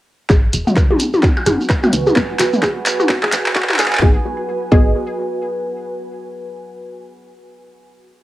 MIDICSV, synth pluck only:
0, 0, Header, 1, 2, 480
1, 0, Start_track
1, 0, Key_signature, 5, "minor"
1, 0, Tempo, 465116
1, 310, Time_signature, 4, 2, 24, 8
1, 8496, End_track
2, 0, Start_track
2, 0, Title_t, "Synth pluck"
2, 0, Program_c, 0, 84
2, 309, Note_on_c, 0, 68, 78
2, 377, Note_off_c, 0, 68, 0
2, 692, Note_on_c, 0, 66, 70
2, 762, Note_off_c, 0, 66, 0
2, 934, Note_on_c, 0, 68, 72
2, 979, Note_off_c, 0, 68, 0
2, 1270, Note_on_c, 0, 66, 81
2, 1372, Note_off_c, 0, 66, 0
2, 1509, Note_on_c, 0, 68, 74
2, 1578, Note_off_c, 0, 68, 0
2, 1893, Note_on_c, 0, 66, 80
2, 1962, Note_off_c, 0, 66, 0
2, 2133, Note_on_c, 0, 68, 77
2, 2179, Note_off_c, 0, 68, 0
2, 2471, Note_on_c, 0, 66, 80
2, 2572, Note_off_c, 0, 66, 0
2, 2709, Note_on_c, 0, 68, 86
2, 2777, Note_off_c, 0, 68, 0
2, 3093, Note_on_c, 0, 66, 81
2, 3162, Note_off_c, 0, 66, 0
2, 3334, Note_on_c, 0, 68, 77
2, 3379, Note_off_c, 0, 68, 0
2, 3669, Note_on_c, 0, 66, 88
2, 3771, Note_off_c, 0, 66, 0
2, 3910, Note_on_c, 0, 68, 83
2, 3978, Note_off_c, 0, 68, 0
2, 4149, Note_on_c, 0, 68, 90
2, 4301, Note_off_c, 0, 68, 0
2, 4868, Note_on_c, 0, 68, 96
2, 5092, Note_off_c, 0, 68, 0
2, 8496, End_track
0, 0, End_of_file